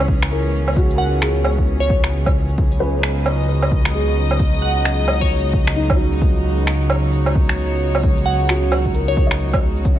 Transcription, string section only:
0.00 2.58 E3 medium
0.00 9.99 B3 medium
0.00 4.32 C#4 medium
0.00 3.62 G#4 medium
0.00 2.58 C#5 medium
2.58 9.85 F#3 medium
2.84 9.86 D#4 medium
3.03 9.99 F#4 medium
3.21 6.67 D#5 medium
6.56 9.99 C#5 medium
9.85 9.99 G#3 medium
9.94 9.99 C#4 medium

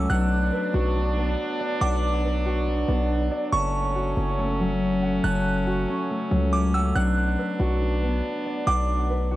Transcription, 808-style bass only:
0.10 0.51 B1 loud
0.74 1.36 B1 loud
1.81 2.84 B1 loud
2.88 3.29 B1 loud
3.53 4.14 F#1 loud
4.17 5.20 F#1 loud
5.24 5.86 F#1 loud
6.31 6.93 C#2 loud
6.95 7.37 B1 loud
7.60 8.21 B1 loud
8.67 9.36 B1 loud

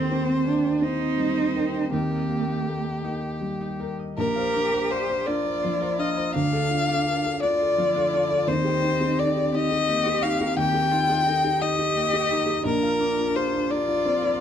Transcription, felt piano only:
0.00 1.88 D#2 medium
0.11 0.69 C4 medium
0.47 0.83 A#3 medium
0.82 1.41 C4 medium
1.17 1.77 G3 soft
1.56 1.93 A#4 medium
1.92 4.13 D#2 medium
2.29 2.89 A#3 soft
2.66 3.04 A4 soft
3.04 3.64 A#3 soft
3.41 4.02 G3 soft
3.80 4.18 A#4 soft
4.17 6.31 A#1 medium
4.37 4.66 C5 medium
4.56 4.84 D4 medium
4.73 5.02 C5 medium
4.91 5.09 D5 soft
5.10 5.38 C5 medium
5.28 5.56 D4 medium
5.46 5.74 C5 medium
5.64 5.92 F3 medium
5.82 6.10 C5 medium
5.99 6.28 D4 medium
6.18 6.35 C5 medium
6.36 8.44 D2 medium
6.53 6.82 A4 medium
6.71 6.99 F4 medium
6.90 7.18 A4 medium
7.07 7.25 A#4 soft
7.25 7.53 A4 medium
7.42 7.70 F4 medium
7.62 7.89 A4 medium
7.78 8.06 F3 soft
7.96 8.24 A4 medium
8.13 8.41 F4 medium
8.31 8.48 A4 medium
8.47 10.54 D#2 medium
8.64 8.93 G4 medium
8.82 9.11 D#4 medium
9.01 9.29 G4 medium
9.19 9.36 A4 medium
9.37 9.64 G4 medium
9.55 9.82 D#4 medium
9.71 9.99 G4 medium
9.89 10.17 A#3 medium
10.06 10.34 G4 medium
10.24 10.51 D#4 medium
10.41 10.58 G4 medium
10.57 12.61 D#2 medium
10.74 11.02 G4 medium
10.92 11.19 D#4 medium
11.10 11.37 G4 medium
11.28 11.44 A4 medium
11.44 11.72 G4 medium
11.62 11.89 D#4 medium
11.79 12.06 G4 medium
11.96 12.23 A#3 medium
12.13 12.41 G4 medium
12.31 12.58 D#4 medium
12.46 12.64 G4 medium
12.65 14.40 A#1 medium
12.83 13.10 F4 medium
13.00 13.28 D4 medium
13.19 13.46 F4 medium
13.36 13.53 G4 medium
13.55 13.81 F4 medium
13.72 13.98 D4 medium
13.89 14.15 F4 medium
14.06 14.33 C4 medium

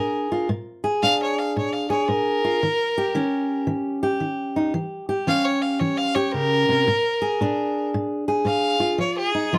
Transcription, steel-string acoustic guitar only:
0.00 0.46 A#2 medium
0.00 0.47 D4 medium
0.00 0.48 G#4 medium
0.32 0.48 F4 medium
0.49 0.99 A#2 medium
0.84 1.89 G#4 medium
1.03 1.52 A#2 medium
1.03 2.60 D4 medium
1.56 2.05 A#2 medium
1.90 2.59 G#4 medium
2.08 2.58 A#2 medium
2.44 2.60 F4 medium
2.63 3.12 D#3 medium
2.98 4.02 G4 medium
3.15 3.64 D#3 medium
3.15 4.72 C#4 medium
3.67 4.17 D#3 medium
4.03 5.08 G4 medium
4.20 4.70 D#3 medium
4.56 4.72 D#4 medium
4.74 5.23 E3 medium
5.09 6.14 G4 medium
5.27 5.76 E3 medium
5.27 6.84 C#4 medium
5.81 6.30 E3 medium
6.16 6.87 G4 medium
6.34 6.68 C#3 medium
6.69 6.87 C3 medium
6.87 7.36 A#2 medium
7.22 8.27 G#4 medium
7.41 7.89 A#2 medium
7.41 8.98 D4 medium
7.94 8.43 A#2 medium
8.28 8.97 G#4 medium
8.45 8.95 A#2 medium
8.80 9.34 F4 medium
8.98 9.48 F3 medium
9.35 9.53 D#4 medium
9.53 9.58 F3 medium
9.53 9.58 D#4 medium

